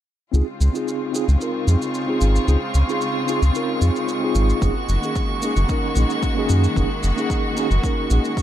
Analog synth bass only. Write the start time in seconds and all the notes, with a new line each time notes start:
0.33 C#2
0.60 C#2
1.28 C#2
1.67 F2
2.21 G#1
2.48 C#2
2.74 C#2
3.42 C#2
3.81 F2
4.35 G#1
4.62 F#1
4.88 F#1
5.56 F#1
5.96 A#1
6.50 F#2
6.76 F#1
7.03 F#1
7.71 F#1
8.10 A#1